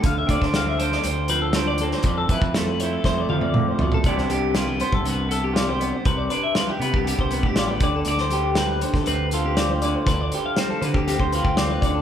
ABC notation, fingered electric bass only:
X:1
M:4/4
L:1/16
Q:1/4=120
K:C
V:1 name="Fingered electric bass" clef=bass
D,,2 D,, D,,4- D,, D,,8 | F,,2 F,, F,,4- F,, F,,2 F,,4 F,, z | C,,6- C,, G,, C,,8 | C,,2 z4 C, C,,2 C,,2 A,,,3 D,,2 |
D,,6- D,, D,, D,,8 | D,,2 z4 D, D,,2 D,,2 D,,3 D,,2 |]